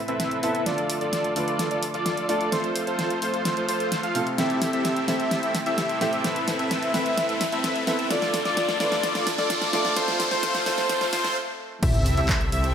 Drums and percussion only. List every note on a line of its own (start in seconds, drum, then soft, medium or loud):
0.08 closed hi-hat soft
0.20 snare medium
0.20 closed hi-hat medium
0.31 closed hi-hat soft
0.43 open hi-hat medium
0.55 closed hi-hat soft
0.66 snare medium
0.66 closed hi-hat medium
0.78 closed hi-hat soft
0.90 open hi-hat loud
1.01 closed hi-hat soft
1.13 snare medium
1.13 closed hi-hat medium
1.24 closed hi-hat soft
1.36 open hi-hat loud
1.48 closed hi-hat soft
1.59 snare medium
1.59 closed hi-hat medium
1.71 closed hi-hat soft
1.83 open hi-hat loud
1.94 closed hi-hat soft
2.06 snare medium
2.06 closed hi-hat medium
2.17 closed hi-hat soft
2.29 open hi-hat medium
2.41 closed hi-hat soft
2.52 snare medium
2.52 closed hi-hat medium
2.64 closed hi-hat soft
2.76 open hi-hat loud
2.87 closed hi-hat soft
2.99 snare medium
2.99 closed hi-hat medium
3.10 closed hi-hat soft
3.22 open hi-hat medium
3.34 closed hi-hat soft
3.45 snare medium
3.45 closed hi-hat medium
3.57 closed hi-hat soft
3.69 open hi-hat loud
3.80 closed hi-hat soft
3.92 snare medium
3.92 closed hi-hat medium
4.03 closed hi-hat soft
4.15 open hi-hat medium
4.27 closed hi-hat soft
4.38 snare medium
4.38 closed hi-hat medium
4.50 closed hi-hat soft
4.62 snare medium
4.62 open hi-hat loud
4.73 closed hi-hat soft
4.85 snare medium
4.85 closed hi-hat medium
4.96 closed hi-hat soft
5.08 snare medium
5.08 open hi-hat medium
5.20 closed hi-hat soft
5.31 snare medium
5.31 closed hi-hat medium
5.43 closed hi-hat soft
5.55 snare medium
5.55 open hi-hat loud
5.66 closed hi-hat soft
5.78 snare medium
5.78 closed hi-hat medium
5.89 closed hi-hat soft
6.01 snare medium
6.01 open hi-hat medium
6.13 closed hi-hat soft
6.24 snare medium
6.24 closed hi-hat medium
6.36 closed hi-hat soft
6.48 snare medium
6.48 open hi-hat loud
6.59 closed hi-hat soft
6.71 snare medium
6.71 closed hi-hat medium
6.83 closed hi-hat soft
6.94 snare medium
6.94 open hi-hat medium
7.06 closed hi-hat soft
7.17 snare medium
7.17 closed hi-hat loud
7.29 closed hi-hat soft
7.41 snare medium
7.41 open hi-hat loud
7.52 closed hi-hat soft
7.64 snare medium
7.64 closed hi-hat medium
7.76 closed hi-hat soft
7.87 snare medium
7.87 open hi-hat medium
7.99 closed hi-hat soft
8.11 snare medium
8.11 closed hi-hat medium
8.22 snare medium
8.22 closed hi-hat soft
8.34 snare medium
8.34 open hi-hat loud
8.45 snare medium
8.45 closed hi-hat soft
8.57 snare medium
8.57 closed hi-hat medium
8.69 snare medium
8.69 closed hi-hat soft
8.80 snare loud
8.80 open hi-hat medium
8.92 snare medium
8.92 closed hi-hat soft
9.03 snare loud
9.03 closed hi-hat loud
9.15 snare medium
9.15 closed hi-hat soft
9.27 snare loud
9.27 open hi-hat loud
9.38 snare medium
9.38 closed hi-hat soft
9.50 snare loud
9.50 closed hi-hat medium
9.62 snare medium
9.62 closed hi-hat soft
9.73 snare loud
9.73 open hi-hat medium
9.85 snare medium
9.85 closed hi-hat soft
9.96 snare loud
9.96 closed hi-hat loud
10.08 snare medium
10.08 closed hi-hat soft
10.20 snare loud
10.20 open hi-hat loud
10.31 snare medium
10.31 closed hi-hat soft
10.43 snare medium
10.43 closed hi-hat medium
10.55 snare medium
10.55 closed hi-hat soft
10.66 snare loud
10.66 open hi-hat medium
10.78 snare medium
10.78 closed hi-hat soft
10.89 snare loud
10.89 closed hi-hat loud
11.01 snare loud
11.01 closed hi-hat soft
11.13 snare loud
11.13 open hi-hat loud
11.24 snare loud
11.24 closed hi-hat soft
11.83 kick loud
11.83 closed hi-hat loud
11.83 crash loud
11.94 closed hi-hat soft
12.06 open hi-hat loud
12.17 closed hi-hat soft
12.29 kick loud
12.29 clap loud
12.29 closed hi-hat medium
12.41 closed hi-hat soft
12.52 open hi-hat medium
12.64 closed hi-hat soft